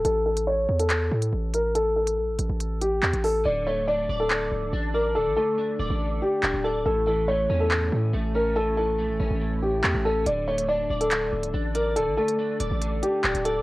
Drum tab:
HH |x--x---xx--x--x-|x--x--x-x-x--xo-|----------------|----------------|
CP |--------x-------|------------x---|--------x-------|------------x---|

HH |----------------|----------------|x--x---xx--x--x-|x--x--x-x-x--xx-|
CP |--------x-------|------------x---|--------x-------|------------x---|